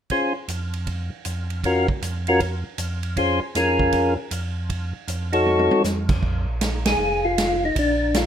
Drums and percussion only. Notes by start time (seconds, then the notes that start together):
0.10 kick, ride
0.48 hi-hat pedal, ride
0.73 ride
0.87 kick, ride
1.25 hi-hat pedal, ride
1.50 ride
1.64 kick, ride
1.88 kick
2.02 hi-hat pedal, ride
2.27 ride
2.40 kick, ride
2.78 hi-hat pedal, ride
3.03 ride
3.17 kick, ride
3.55 snare, hi-hat pedal, ride
3.79 kick
3.92 kick, ride
4.31 hi-hat pedal, ride
4.70 kick, ride
5.08 hi-hat pedal, ride
5.33 ride
5.46 high tom
5.59 high tom
5.71 high tom
5.84 snare, hi-hat pedal
6.09 kick, crash
6.23 kick
6.61 snare, hi-hat pedal, ride
6.85 snare, ride
7.38 snare, hi-hat pedal, ride
7.76 kick, ride
8.14 snare, hi-hat pedal, ride